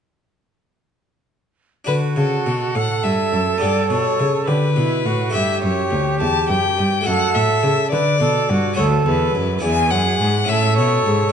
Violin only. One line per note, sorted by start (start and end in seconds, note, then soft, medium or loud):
1.87 1.95 B4 medium
2.16 2.76 A4 medium
2.75 3.05 F#5 medium
3.03 3.60 E5 medium
3.61 3.89 D5 medium
3.89 4.45 C#5 medium
4.46 5.31 B4 medium
5.33 5.62 E5 medium
5.62 6.19 C#5 medium
6.20 6.48 A5 medium
6.49 7.07 G5 medium
7.06 7.37 F#5 medium
7.35 7.90 E5 medium
7.91 8.75 D5 medium
8.76 8.84 C#5 medium
9.05 9.62 B4 medium
9.63 9.92 G#5 medium
9.91 10.50 F#5 medium
10.48 10.76 E5 medium
10.77 11.32 C#5 medium